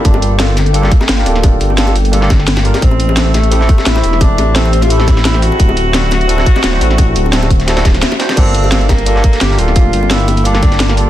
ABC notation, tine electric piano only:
X:1
M:4/4
L:1/16
Q:"Swing 16ths" 1/4=173
K:Gdor
V:1 name="Tine electric piano"
[B,DFGA]4 [B,DFGA]2 z2 [B,DFGA] [B,DFGA] z3 [B,DFGB] [B,DFGA]2- | [B,DFGA]4 [B,DFGA]2 z2 [B,DFGA] [B,DFGA] z4 [B,DFGB]2 | z4 [A,CEGA]2 z2 [A,CEGA] [A,CEGA] z3 [A,CEGc] [A,CEGA]2- | [A,CEGA]4 [A,CEGA]2 z2 [A,CEGA] [A,CEGA] z3 [A,CEGc] [CDE^FA]2- |
[CDE^FA]4 [CDEFA]2 z2 [CDEFA] [CDEFA] z3 [CDEFc] [CDEFA]2- | [CDE^FA]4 [CDEFA]2 z2 [CDEFA] [CDEFA] z4 [CDEFc]2 | [B,DFGA]4 [B,DFGA]2 z2 [B,DFGA] [B,DFGA] z3 [B,DFGB] [B,DFGA]2- | [B,DFGA]4 [B,DFGA]2 z2 [B,DFGA] [B,DFGA] z3 [B,DFGB] [B,DFGA]2 |]